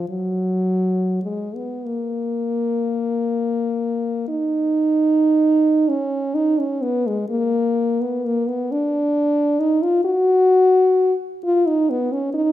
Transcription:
0.09 F#3
1.23 G#3
1.55 B3
1.86 A#3
4.28 D#4
5.89 C#4
6.35 D#4
6.59 C#4
6.82 B3
7.07 G#3
7.29 A#3
8.01 B3
8.25 A#3
8.48 B3
8.71 D4
9.60 D#4
9.82 F4
10.05 F#4
11.43 F4
11.66 D#4
11.90 B3
12.12 C#4
12.34 D#4

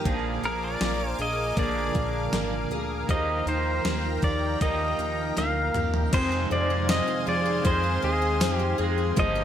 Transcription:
Already playing: A#3 D#4 G4 A#4 F5
0.05 A#1 A#2 D3 F3 A#3 D4 G#4 G#5 D6, kick, closed hi-hat
0.42 A#1 A#3 D4 G#4 A#4, closed hi-hat
0.46 F3
0.64 D5
0.81 A#1 A#3, snare, closed hi-hat
1.09 C5
1.19 A#1 G#4 D#5, closed hi-hat
1.56 A#1 A#2 D3 F3 A#3 D5, kick, closed hi-hat
1.61 D4 G#4
1.95 A#1 D4, kick, closed hi-hat
2.33 G#1 A#3, snare, closed hi-hat
2.71 D2 G#4, closed hi-hat
3.07 D#2 D#3 F3 A#3 D#5 G5 A#5, kick, closed hi-hat
3.12 D#4 G4
3.46 D#2 D#4 C5, closed hi-hat
3.85 D#2 A#3, snare, closed hi-hat
4.22 D#2 G4 D5, kick, closed hi-hat
4.61 D#2 F3 A#3 D#4 D#5, kick, closed hi-hat
4.65 G4
4.99 D#2 D#4, closed hi-hat
5.37 D2 A#3 F5, snare, closed hi-hat
5.74 D#2 G4, closed hi-hat, mid tom
5.94 floor tom
6.11 F2 C3 D#3 C4 C5 F5 G#5, kick, closed hi-hat, crash
6.15 G#3 C4 G#4
6.32 D#4
6.51 F2 C4 D5
6.70 D#4
6.89 C4 D#5, snare, closed hi-hat, tambourine
7.08 D#4
7.27 F2 G#4 D5
7.46 D#4
7.64 F2 D#3 G#3 C4 G#4 C5, kick, closed hi-hat
7.83 D#4
8.02 D#2 C4 G#4
8.22 D#4
8.40 F2 C4, snare, closed hi-hat, tambourine
8.54 G4
8.59 D#4
8.78 F2 G#3 C4 G#4
8.82 D#3
8.98 D#4
9.16 G1 G2 D#3 F3 A#3 A#4 D#5 F5 G5, kick, closed hi-hat
9.20 D#4 G4
9.35 D#4

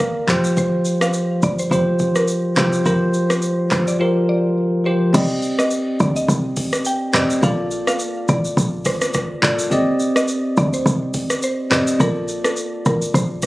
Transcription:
Already playing: A#3 A#4 D5 F5
0.00 kick, cross-stick
0.27 F1 F3 F4 G4 C5, clap, mid tom, shaker
0.44 shaker
0.57 C5, kick, shaker
0.85 shaker
1.01 F5, cross-stick, shaker
1.13 shaker
1.43 G1 D5, kick, shaker
1.59 C5, shaker
1.70 F1 F3 F4 G4 C5, kick, shaker
1.99 kick, shaker
2.16 A#4, cross-stick, shaker
2.28 shaker
2.56 C2 F3 F4 G4 C5, cross-stick, clap, mid tom, shaker
2.73 shaker
2.84 F1 F3 F4 G4 A#4 C5, kick, shaker
3.14 shaker
3.30 C5, cross-stick, shaker
3.42 shaker
3.71 G1 C5, kick, cross-stick, clap, shaker
3.88 D5, shaker
3.99 F3 F4 G4 A#4 C5
4.29 D5
4.85 F3 F4 G4 C5
5.13 C2 C4 G4 D5 D#5, kick, crash, shaker
5.42 shaker
5.59 D#5, cross-stick, shaker
5.71 shaker
6.00 D2 D5, kick, shaker
6.16 D#5, shaker
6.28 C2, kick, shaker
6.56 kick, open hi-hat, shaker
6.73 cross-stick, shaker
6.85 G5, shaker
7.13 F1 C4 G4 D5 D#5, cross-stick, clap, mid tom, shaker
7.30 shaker
7.41 A#1 A#3 F4 A4 D5 F5, kick, shaker
7.71 shaker
7.87 F5, cross-stick, shaker
7.99 shaker
8.29 A1 D5, kick, shaker
8.45 shaker
8.57 A#1, kick, shaker
8.85 C5, kick, cross-stick, open hi-hat, shaker
9.01 cross-stick, shaker
9.14 kick, cross-stick, shaker
9.42 G1 A#3 F4 A4 D5, clap, mid tom, shaker
9.59 shaker
9.70 C2 C4 G4 D5 D#5, kick, shaker
10.00 shaker
10.16 D#5, cross-stick, shaker
10.28 shaker
10.57 D2 D5, kick, shaker
10.73 C5, shaker
10.86 C2, kick, shaker
11.14 kick, open hi-hat, shaker
11.30 cross-stick, shaker
11.42 C5, shaker
11.70 F1 C4 G4 D5 D#5, cross-stick, clap, mid tom, shaker
11.87 shaker
11.99 A#1 A#3 F4 A4 A#4 D5, kick, shaker
12.28 shaker
12.44 A4, cross-stick, shaker
12.57 shaker
12.86 A1 A#4, kick, shaker
13.02 shaker
13.14 A#1 C5, kick, shaker
13.42 kick, open hi-hat, shaker

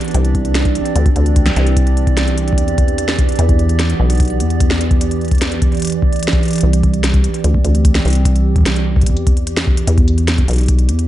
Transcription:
Already playing: E3 B3 D4 G4 D5
0.01 closed hi-hat
0.04 closed hi-hat
0.08 closed hi-hat
0.11 closed hi-hat
0.15 C2, closed hi-hat
0.20 C4
0.25 closed hi-hat
0.35 kick, closed hi-hat
0.45 closed hi-hat
0.55 snare, closed hi-hat
0.65 kick, closed hi-hat
0.75 closed hi-hat
0.86 closed hi-hat
0.96 D2, closed hi-hat
1.06 kick, closed hi-hat
1.16 D2, closed hi-hat
1.26 closed hi-hat
1.36 kick, closed hi-hat
1.46 snare, closed hi-hat
1.56 C2, closed hi-hat
1.67 closed hi-hat
1.77 kick, closed hi-hat
1.87 closed hi-hat
1.97 closed hi-hat
2.07 kick, closed hi-hat
2.17 snare, closed hi-hat
2.27 closed hi-hat
2.38 closed hi-hat
2.48 closed hi-hat
2.53 kick
2.58 E2, closed hi-hat
2.68 closed hi-hat
2.78 kick, closed hi-hat
2.88 closed hi-hat
2.98 closed hi-hat
3.08 snare, closed hi-hat
3.19 kick, closed hi-hat
3.29 closed hi-hat
3.32 closed hi-hat
3.36 E2, closed hi-hat
3.39 closed hi-hat
3.46 B3, kick, closed hi-hat
3.59 closed hi-hat
3.69 closed hi-hat
3.79 snare, closed hi-hat
3.90 closed hi-hat
4.00 B1
4.10 closed hi-hat
4.12 closed hi-hat
4.15 closed hi-hat
4.17 kick, closed hi-hat
4.20 closed hi-hat
4.23 closed hi-hat
4.25 closed hi-hat
4.28 closed hi-hat
4.30 closed hi-hat
4.40 E2, closed hi-hat
4.50 closed hi-hat
4.60 kick, closed hi-hat
4.71 snare
4.81 closed hi-hat
4.91 kick, closed hi-hat
5.01 closed hi-hat
5.11 closed hi-hat
5.21 closed hi-hat
5.25 closed hi-hat
5.28 closed hi-hat
5.31 kick, closed hi-hat
5.35 closed hi-hat
5.38 snare, closed hi-hat
5.42 closed hi-hat
5.52 closed hi-hat
5.62 kick, closed hi-hat
5.72 closed hi-hat
5.75 closed hi-hat
5.77 closed hi-hat
5.80 closed hi-hat
5.82 closed hi-hat
5.85 closed hi-hat
5.87 closed hi-hat
5.90 closed hi-hat
5.92 closed hi-hat
6.02 D2, kick
6.13 closed hi-hat
6.16 closed hi-hat
6.19 closed hi-hat
6.23 closed hi-hat
6.28 snare
6.33 kick, closed hi-hat
6.43 closed hi-hat
6.45 closed hi-hat
6.48 closed hi-hat
6.51 closed hi-hat
6.53 closed hi-hat
6.56 closed hi-hat
6.58 closed hi-hat
6.61 C2, closed hi-hat
6.73 closed hi-hat
6.80 C4, kick, closed hi-hat
6.94 closed hi-hat
7.04 snare, closed hi-hat
7.14 kick, closed hi-hat
7.24 closed hi-hat
7.34 closed hi-hat
7.44 D2, closed hi-hat
7.54 kick
7.65 D2, closed hi-hat
7.75 closed hi-hat
7.85 kick, closed hi-hat
7.95 snare, closed hi-hat
8.05 C2, closed hi-hat
8.08 closed hi-hat
8.10 closed hi-hat
8.13 closed hi-hat
8.15 closed hi-hat
8.25 kick, closed hi-hat
8.36 closed hi-hat
8.56 kick, closed hi-hat
8.58 kick
8.61 kick
8.63 kick, snare, closed hi-hat
8.76 closed hi-hat
8.96 kick
9.01 kick, closed hi-hat
9.06 E2, kick, closed hi-hat
9.17 closed hi-hat
9.27 kick, closed hi-hat
9.37 closed hi-hat
9.47 closed hi-hat
9.57 snare, closed hi-hat
9.67 kick
9.77 closed hi-hat
9.87 E2, closed hi-hat
9.98 B3, kick, closed hi-hat
10.08 D4, closed hi-hat
10.18 closed hi-hat
10.28 snare, closed hi-hat
10.38 kick, closed hi-hat
10.48 B1, closed hi-hat
10.51 closed hi-hat
10.53 closed hi-hat
10.56 closed hi-hat
10.58 closed hi-hat
10.61 closed hi-hat
10.63 closed hi-hat
10.66 closed hi-hat
10.68 kick, closed hi-hat
10.79 closed hi-hat
10.89 E2, closed hi-hat
10.99 closed hi-hat

